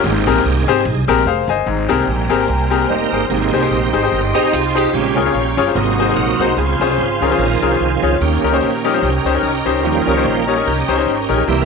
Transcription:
Already playing: D#4 G#4
0.04 G#1 G#2 A#3 C4 G4
0.27 A#1 C4 G4 G#4 A#4
0.45 C2
0.67 G#1 C4 G4 G#4 C5
0.85 C2
1.08 A#1 G3 A#3 C4 G4 G#4 A#4
1.26 F1 G#4 C5 F5
1.48 G1 C5 D#5 G#5
1.66 G#1 G#2 C5 G5 G#5 A#5
1.89 C2 G3 A#3 C4 G4 G#4 A#4
2.07 A#1
2.30 G#1 C4 G4 G#4 A#4
2.48 C2
2.70 C4 G4 G#4 A#4
2.89 F1 D#4 A#4 C5 D#5
3.12 G1 G#4 C5
3.30 G#1 G#2 C3 A#3 C4 D#4 G4 G#4 D#5 G5 C6
3.52 C2 D#4 G4 G#4 C5
3.61 D#4 G4 G#4 C5
3.70 A#1 D#4 G4 C5
3.93 G#1 D#4 G4 G#4 C5
4.03 D#4 G4 G#4 C5
4.12 G1 D#4 G4 A#4
4.34 C4 D#4 G4 G#4 C5
4.43 D#4 G4 G#4 C5
4.53 C2 F4
4.75 D#4 F4 G4 G#4 C5
4.93 A#1 A#2 C#3 G#3 C4 C#4 G4 F5 A#5 C#6
5.16 C#2 C#4 F4 G#4 A#4
5.25 C#4 F4 G#4 C#5
5.34 A#1
5.57 G1 C#4 F4 G#4 C#5
5.67 C#4 F4 G#4 C5
5.75 G#1 G#2 C3 F#3 A#3 C4 D#4 G#4 F#5 C6 D#6
5.99 D#4 F#4 G#4 C5
6.08 D#4 F#4 G#4 C5
6.16 A#1 D#4 F#4 A#4
6.39 C2 D#4 F#4 G#4 C5
6.57 C#2 C#3 C4 F4 G#4 F5 G#5
6.80 C2 C#4 F4 G#4 C5
6.89 C#4 F4 G#4 C5
6.97 G#1 F4 G#4 C5
7.20 C#2 D#3 F3 C4 C#4 F4 G#4 A#4
7.30 C#4 F4 G#4 C5
7.39 A#1 F4 A#4
7.62 C2 C4 C#4 F4 G#4 A#4
7.71 C#4 F4 G#4 C5
7.80 C2
8.02 C#2 C#4 F4 G#4 C#5
8.21 D#2 D#3 A#3 C#4 G4 D#5 G5 A#5
8.43 C#2 C#4 D#4 G4 A#4
8.53 C#4 D#4 G4 C5
8.62 A#1
8.85 F3 G3 C#4 D#4 G4 A#4
8.93 C#4 D#4 G4 C5
9.02 C2 C#4 G4 A#4
9.24 C#2 C#4 D#4 G4 C5
9.34 C#4 D#4 G4 A#4 C5
9.43 C2 C#4 G4 A#4
9.65 C#2 C#4 D#4 G4 C5
9.84 D#2 D#3 F3 G3 A#3 C#4 G4
9.99 A#4
10.07 C#2 C#4 D#4 G4 A#4
10.13 C#4 C#5
10.17 D#4 G4 C5
10.25 A#1 C5
10.40 A#4
10.47 C#4 D#4 G4 C#5
10.53 C#4 D#4 G4 C#5
10.57 A#4
10.66 C2 C#4 G4 A#4
10.78 D#5 F5
10.88 C#2 C#4 D#4 G4 C5
10.93 C#4 C#5
10.98 D#4 G4 C5
11.07 G#1 C5
11.21 A#4
11.29 A#1 C#4 D#4 G4 A#4
11.34 G#4
11.47 C2 C3 E3 G3 A#3 E4 G4 E5 G5 C6
11.61 A#4

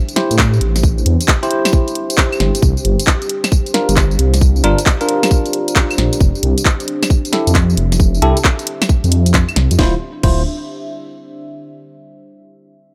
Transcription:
Already playing: D4 G4 C5 E5
0.09 closed hi-hat, tambourine
0.16 E4 G4 C5, snare, closed hi-hat
0.31 A2, closed hi-hat, tambourine
0.39 kick, clap, closed hi-hat, tambourine
0.53 tambourine
0.61 A1, closed hi-hat
0.76 snare, closed hi-hat, tambourine
0.83 kick, tambourine
0.98 tambourine
1.06 E2, closed hi-hat
1.21 closed hi-hat, tambourine
1.28 kick, clap, tambourine
1.43 E4 G4 C5, closed hi-hat, tambourine
1.51 closed hi-hat
1.65 snare, closed hi-hat, tambourine, claves
1.73 kick, tambourine
1.88 closed hi-hat, tambourine
1.95 closed hi-hat
2.10 closed hi-hat, tambourine
2.18 kick, clap, closed hi-hat
2.32 tambourine, claves
2.40 G1, snare, closed hi-hat
2.55 closed hi-hat, tambourine
2.62 C2 D4, kick, tambourine
2.77 tambourine
2.85 G1, closed hi-hat
2.99 closed hi-hat, tambourine
3.07 kick, clap, tambourine
3.22 closed hi-hat, tambourine
3.29 closed hi-hat
3.39 F5
3.44 snare, closed hi-hat, tambourine, claves
3.52 kick, tambourine
3.66 closed hi-hat, tambourine
3.74 D4 F4 A#4, snare, closed hi-hat
3.89 G1, closed hi-hat, tambourine
3.97 kick, clap, closed hi-hat, tambourine
4.11 tambourine
4.19 C2, closed hi-hat
4.34 snare, closed hi-hat, tambourine
4.41 kick, tambourine
4.56 tambourine
4.64 G1 D4 F4 A#4, closed hi-hat
4.78 closed hi-hat, tambourine
4.86 kick, clap, tambourine
5.01 D4 F4 A#4, closed hi-hat, tambourine
5.09 closed hi-hat
5.23 snare, closed hi-hat, tambourine, claves
5.31 kick, tambourine
5.46 closed hi-hat, tambourine
5.53 closed hi-hat
5.68 closed hi-hat, tambourine
5.76 kick, clap, closed hi-hat, tambourine
5.91 tambourine, claves
5.98 A#1, snare, closed hi-hat
6.13 closed hi-hat, tambourine
6.21 F1, kick, tambourine
6.35 tambourine
6.43 C2, closed hi-hat
6.58 closed hi-hat, tambourine
6.65 E5, kick, clap
6.80 closed hi-hat, tambourine
6.88 closed hi-hat
7.03 snare, closed hi-hat, tambourine, claves
7.10 kick, tambourine
7.25 closed hi-hat, tambourine
7.33 E4 G4 A4, snare, closed hi-hat
7.47 F2, closed hi-hat, tambourine
7.55 kick, clap, closed hi-hat, tambourine
7.70 tambourine
7.77 F1, closed hi-hat
7.92 snare, closed hi-hat, tambourine
8.00 kick, tambourine
8.14 tambourine
8.22 C2 E4 G4 A4, closed hi-hat
8.37 closed hi-hat, tambourine
8.44 kick, clap, tambourine
8.59 closed hi-hat, tambourine
8.67 closed hi-hat
8.82 snare, closed hi-hat, tambourine, claves
8.89 kick, tambourine
9.04 F2, closed hi-hat, tambourine
9.12 closed hi-hat
9.26 closed hi-hat, tambourine
9.34 kick, clap, closed hi-hat, tambourine
9.49 tambourine, claves
9.56 C2, snare, closed hi-hat
9.71 F2, closed hi-hat, tambourine
9.79 D1 D4 E4 F4 C5, kick, snare
9.87 G4
9.95 C5
10.00 E5
10.23 D1 E4 F4 C5, kick, crash

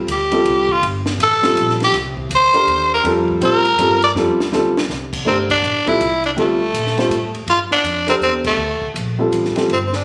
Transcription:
0.07 D2, hi-hat pedal, ride
0.12 G4
0.31 G3 C4 F4 A4, ride
0.44 C2, ride
0.69 F4, kick
0.81 G1, ride
1.06 snare
1.18 A1, hi-hat pedal, ride
1.23 A4
1.42 G3 C4 F4 A4, snare, ride
1.55 A#1, hi-hat pedal, ride
1.70 snare
1.80 G4, snare, ride
1.92 C2, snare, ride
2.17 kick
2.29 D2, hi-hat pedal, ride
2.35 C5
2.53 D4 G4 A4 A#4, ride
2.67 D#2, ride
2.94 A#4
3.03 F2 G3 C4 F4 A4, ride
3.28 kick
3.41 A2 G3 C4 F4 C5, hi-hat pedal, ride
3.45 A#4
3.65 ride
3.78 G2 G3 C4 F4 A4, hi-hat pedal, ride
4.02 D5, ride
4.14 F2 G3 C4 F4 A4, snare
4.38 muted upright bass stroke, snare
4.51 D2 G3 C4 F4 A4, snare, hi-hat pedal
4.77 snare
4.88 C2, snare
5.13 kick, crash
5.25 G1 A3 C4 D4 G4 A#4
5.50 D4, kick, crash
5.62 A1, hi-hat pedal
5.86 G3 C4 E4 F4 A4, kick, ride
5.99 C2, hi-hat pedal, ride
6.24 D4, ride
6.36 D2 G3 A3 C4 F4 A4, ride
6.73 A#2, hi-hat pedal, ride
6.87 snare
6.97 G3 C4 F4 C5, snare, ride
7.10 A2, hi-hat pedal, ride
7.35 ride
7.47 G2 F4, ride
7.70 D4, muted upright bass stroke, snare
7.83 F2, hi-hat pedal, ride
8.07 C4 D4 G4 A4 A#4, snare, ride
8.20 E2 C4, hi-hat pedal
8.44 A3, kick, crash
8.57 D2
8.82 kick
8.94 A#1, hi-hat pedal, ride
9.19 G3 C4 F4 A4
9.31 A1, hi-hat pedal, ride
9.45 snare
9.55 G3 C4 F4 A4, muted upright bass stroke, snare, ride
9.68 G1, ride
9.73 C4
9.87 C4
9.93 D4, snare

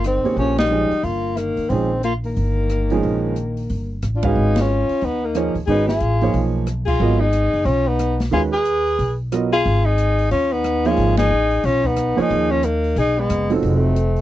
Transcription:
Already playing: G1
0.04 D#3 C4, cross-stick, closed hi-hat
0.24 A#3 C#4 G4 G#4 C#5, muted upright bass stroke, open hi-hat
0.37 A#1 F3 C#4, open hi-hat
0.58 G3 D#4, snare, ride
0.71 F3 G#3 C#4 D#4 G#4
0.91 muted upright bass stroke, open hi-hat
1.03 G1 A#3 F4, open hi-hat
1.37 D#3 A#3, cross-stick, closed hi-hat
1.57 muted upright bass stroke, open hi-hat
1.70 A#1 D#3 F3 G#3 C4 C#4 D#4 G#4, open hi-hat
2.03 A#3 F4, closed hi-hat
2.24 D#3 A#3, open hi-hat
2.36 G1, open hi-hat
2.69 cross-stick, closed hi-hat
2.90 F3 G#3 C#4 D#4 G#4, open hi-hat
3.03 A#1, open hi-hat
3.36 closed hi-hat
3.57 open hi-hat
3.69 G1, open hi-hat
4.02 A1, cross-stick, closed hi-hat
4.15 D4 F4
4.23 G#3 C#4 F#4 G#4 B4 F5, kick, ride
4.27 D#4
4.35 G#1
4.56 F4, snare, ride
4.61 C#4
4.89 muted upright bass stroke, open hi-hat
5.01 D#2 B3 D#4, open hi-hat
5.22 A#3 D#4
5.35 F3 A#3 D#4 G#4 C#5, cross-stick, closed hi-hat
5.54 D#2, open hi-hat
5.67 G#1 D#3 G#3 C#4 D#4 F#4 G#4, open hi-hat
5.71 B4
5.87 F4 G#4, snare
6.00 A1, closed hi-hat
6.21 F3 A#3 D#4 G#4 C#5, open hi-hat
6.34 B1, open hi-hat
6.67 cross-stick, closed hi-hat
6.86 F4 G#4, kick, crash
7.00 G#1 F#3 B3 F4 A#4 D#5
7.20 D#4 G#4
7.33 closed hi-hat
7.53 F#1, open hi-hat
7.65 B1 C#4 F4, open hi-hat
7.88 B3 D#4
7.99 cross-stick, closed hi-hat
8.20 snare, open hi-hat
8.31 D#2 D#3 G#3 C#4 F4 F#4 G#4 B4, open hi-hat
8.53 G#4 B4
8.65 closed hi-hat
8.86 open hi-hat
8.99 B1, open hi-hat
9.32 F#3 B3 F4 A#4 D#5, cross-stick, closed hi-hat
9.52 F4 G#4
9.65 G#1, open hi-hat
9.86 D#4 G#4
9.98 closed hi-hat
10.19 open hi-hat
10.31 D#2 C#4 F4, open hi-hat
10.53 B3 D#4
10.64 cross-stick, closed hi-hat
10.85 F3 A#3 D#4 F4 G#4 C#5, open hi-hat
10.97 G#1, open hi-hat
11.17 D#4 G#4, snare, ride
11.31 A1
11.51 open hi-hat
11.63 B1 C#4 F4, open hi-hat
11.84 B3 D#4, kick
11.96 cross-stick, closed hi-hat
12.16 F3 A#3 D#4 G#4 C#5, muted upright bass stroke, open hi-hat
12.21 D#4
12.30 D#2, open hi-hat
12.51 C#4 F4
12.63 A#3 D#4, closed hi-hat
12.84 open hi-hat
12.96 B1 D#4 G#4, open hi-hat
13.18 G#3 B3
13.30 F#1, cross-stick, closed hi-hat
13.50 F#3 C4 D#4 F4 A4, open hi-hat
13.62 F1 A3 C4, open hi-hat
13.96 closed hi-hat
14.16 open hi-hat

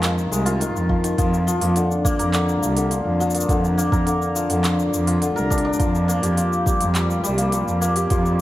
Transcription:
Already playing: F2 F4
0.03 D#3, clap, open hi-hat, cabasa
0.18 cabasa
0.31 C2 G#3, cabasa
0.46 F4, open hi-hat, cabasa
0.60 D#3, open hi-hat, cabasa
0.75 F2, cabasa
0.89 F3, kick
1.04 D#3, open hi-hat, cabasa
1.18 F2 F3, kick, open hi-hat, cabasa
1.34 cabasa
1.47 F3, cabasa
1.61 F2 A#3, open hi-hat, cabasa
1.76 D3, open hi-hat, cabasa
1.91 cabasa
2.05 A#3, kick, cabasa
2.19 F2 A#4, open hi-hat, cabasa
2.33 D3, clap, open hi-hat, cabasa
2.49 cabasa
2.62 C2 F3, cabasa
2.77 D3, open hi-hat, cabasa
2.91 F3, open hi-hat, cabasa
3.06 F2
3.20 F3, cabasa
3.30 cabasa
3.35 A#3, open hi-hat, cabasa
3.40 cabasa
3.49 F2 D3, kick, open hi-hat, cabasa
3.65 cabasa
3.78 A#3, cabasa
3.92 F2 A#4, kick, cabasa
4.06 D3, open hi-hat, cabasa
4.22 cabasa
4.35 F3, cabasa
4.50 F2 D3, open hi-hat, cabasa
4.64 F3, clap, open hi-hat, cabasa
4.79 cabasa
4.93 F2 D5, cabasa
5.07 F4, open hi-hat, cabasa
5.22 D3, open hi-hat, cabasa
5.36 C2 A#4, cabasa
5.50 D4, kick, cabasa
5.58 open hi-hat
5.65 D4
5.73 cabasa
5.79 F2 F3, kick, open hi-hat, cabasa
5.95 cabasa
6.08 A#3, cabasa
6.23 F2 G4, open hi-hat, cabasa
6.37 F3, open hi-hat, cabasa
6.53 cabasa
6.66 G3, kick, cabasa
6.80 F2 F3, open hi-hat, cabasa
6.95 G3, clap, open hi-hat, cabasa
7.10 cabasa
7.24 C2 G3, cabasa
7.38 A#3, open hi-hat, cabasa
7.52 F3, open hi-hat, cabasa
7.67 F2, cabasa
7.81 A#3, cabasa
7.96 G4, open hi-hat, cabasa
8.10 F2 F3, kick, open hi-hat, cabasa
8.26 cabasa

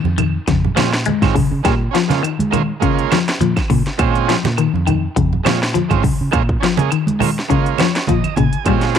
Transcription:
0.04 F2, high conga
0.18 D#3, closed hi-hat, high conga, low conga, claves
0.48 F2 C#3, kick, snare, closed hi-hat
0.65 low conga
0.75 A#2 F3 G#3 C4 C#4 F4, snare, closed hi-hat, high conga, claves
0.93 snare
1.06 G#3, closed hi-hat, high conga
1.22 G#2 G#3 C4 C#4 F4, kick, snare, closed hi-hat, high conga, claves
1.35 C#3, kick, open hi-hat, low conga
1.51 C#3
1.63 A#2 G3 G#3 A#3 C#4 F4, kick, snare, closed hi-hat, claves
1.91 F3 C#4 F4, closed hi-hat
1.96 snare
2.08 C#3 G#3 A#3 C#4 F4, closed hi-hat, high conga
2.12 snare
2.23 D#3, closed hi-hat, high conga, claves
2.39 G#3, closed hi-hat, high conga
2.50 D#3 G#3 A#3 C#4 F4, closed hi-hat, high conga, low conga, claves
2.80 C#3 G#3 A#3 C#4 F4, kick, closed hi-hat
2.99 closed hi-hat
3.11 F3, snare, closed hi-hat, high conga, claves
3.28 snare, closed hi-hat
3.40 A#2 F3, closed hi-hat, high conga
3.56 kick, snare, closed hi-hat, claves
3.70 A#2 C#3, kick, open hi-hat, low conga
3.86 muted fingered electric bass stroke, snare, closed hi-hat
3.98 A#2 G#3 C4 C#4 F4, muted clean electric guitar stroke, kick, closed hi-hat, high conga, claves
4.15 closed hi-hat
4.29 F3, snare, closed hi-hat
4.44 A#2, snare, closed hi-hat, high conga
4.57 D#3, closed hi-hat, high conga, claves
4.74 F2, high conga
4.86 D#3, closed hi-hat, high conga, low conga, claves
5.16 F2 C#3, kick, closed hi-hat
5.33 low conga
5.43 A#2 F3 G#3 C4 C#4 F4, snare, closed hi-hat, high conga, claves
5.63 snare
5.74 F3, closed hi-hat, high conga
5.89 G#2 G#3 C4 C#4 F4, kick, closed hi-hat, high conga, claves
6.03 C#3, kick, open hi-hat, low conga
6.21 C#3
6.31 A#2 G#3 A#3 C#4 F4, muted clean electric guitar stroke, kick, closed hi-hat, high conga, claves
6.49 kick
6.60 F3 C#4 F4, closed hi-hat
6.64 snare
6.76 C#3 G#3 A#3 C#4 G#4, closed hi-hat, high conga
6.91 D#3, closed hi-hat, claves
7.07 G#3, closed hi-hat, high conga
7.19 D#3 G#3 A#3 C#4 F4, open hi-hat, high conga, low conga, claves
7.39 snare
7.48 C#3 G#3 A#3 C#4 F4, kick, closed hi-hat, high conga
7.66 closed hi-hat
7.78 F3 C#5, snare, closed hi-hat, high conga, claves
7.95 snare, closed hi-hat
8.07 A#2 F3 D#5, kick, closed hi-hat, high conga
8.24 closed hi-hat, high conga, claves
8.36 A#2 C#3 G#5, kick, closed hi-hat, low conga
8.53 muted fingered electric bass stroke, closed hi-hat
8.64 A#2 G3 G#3 C4 C#4 F4, kick, closed hi-hat, claves
8.81 snare, closed hi-hat
8.95 closed hi-hat

